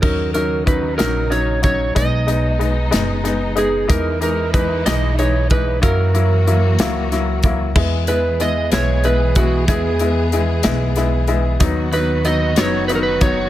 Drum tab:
CC |x-----|------|------|------|
HH |-xxxxx|xxxxxx|xxxxxx|xxxxxx|
SD |---o--|---oo-|---o--|---oo-|
BD |o-o--o|o-----|o-o--o|o----o|

CC |x-----|------|------|
HH |-xxxxx|xxxxxx|xxxxxx|
SD |---o--|---oo-|---o--|
BD |o----o|o-----|o----o|